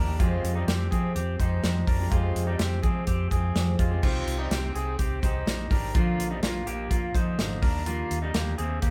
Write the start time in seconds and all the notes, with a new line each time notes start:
Already playing: D#2 D4 A#4
0.07 A#3 D#4 G4
0.19 F2 C3 F3 G#3 C4 F4 G4, kick, closed hi-hat
0.43 F2, closed hi-hat
0.55 F3 G3 G#3 C4 D#4 G4
0.67 F2 C4 G4, snare, closed hi-hat
0.91 F3 G#3 C4 G4 G#4, kick, closed hi-hat
1.15 F2 C4 G4, closed hi-hat
1.39 F2 F3 G#3 C4 D#4 G4 C5, kick, closed hi-hat
1.62 F2 F3 G#3 C4 G4, snare, closed hi-hat
1.87 F2 D4 A#4, kick, open hi-hat
1.98 F3 G#3 C4 G4
2.10 F2 C3 F3 G#3 C4 F4 G4, kick, closed hi-hat
2.35 F2, closed hi-hat
2.47 F3 G3 G#3 C4 D#4 G4
2.59 F2 C4 G4, snare, closed hi-hat
2.82 F3 G#3 C4 G4 G#4, kick, closed hi-hat
3.07 F2 C4 G4, kick, closed hi-hat
3.30 F2 F3 G#3 C4 G4 G#4, kick, closed hi-hat
3.55 F2 F3 G#3 C4 G4, snare, closed hi-hat
3.79 F2 G#3 F4, kick, closed hi-hat
3.91 F3 G#3 C4 G4
4.02 C2 C3 G3 C4 D#4 F4 G4, kick, crash
4.26 C2, closed hi-hat
4.38 G3 C4 D#4 G4
4.50 C2 C4 G4, snare, closed hi-hat
4.75 C2 C4 G#4, closed hi-hat
4.99 C2 C4 G4, kick, closed hi-hat
5.22 C2 G3 C4 D#4 G4 C5, kick, closed hi-hat
5.46 A#1 G3 C4 D#4 G4, snare, closed hi-hat
5.70 G#1 G3 C4 D4 D#4 G4 A#4, kick, open hi-hat
5.94 A#1 A#2 D3 F3 A#3 D4 F4, kick, closed hi-hat
6.19 A#1, closed hi-hat
6.30 F3 G3 A#3 D4 D#4
6.43 A#1 A#3 F4, snare, closed hi-hat
6.66 A#1 A#3 G4, closed hi-hat
6.90 A#1 A#3 F4, kick, closed hi-hat
7.14 A#1 D3 F3 A#3 D4 D#4 C5, kick, closed hi-hat
7.38 G#1 D3 F3 A#3 D4, snare, closed hi-hat
7.62 D#2 D#3 G3 A#3 D4 A#4, kick, open hi-hat
7.86 D#3 G3 A#3 D4 F4, closed hi-hat
8.11 D#2, closed hi-hat
8.22 G3 A#3 D4 D#4
8.34 D#2 A#3 G4, snare, closed hi-hat
8.58 D#2 C4 G#4, closed hi-hat
8.82 D#2 A#3 G4, kick, closed hi-hat